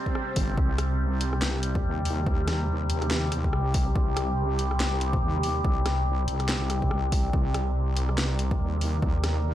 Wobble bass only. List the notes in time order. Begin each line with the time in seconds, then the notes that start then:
0.36 G1
0.58 C2
1.84 D#2
2.27 D#2
3.53 C2
3.96 C2
5.22 D#2
5.65 C2
6.28 C2
6.91 C2
7.34 C2
8.60 D#2
9.02 D#2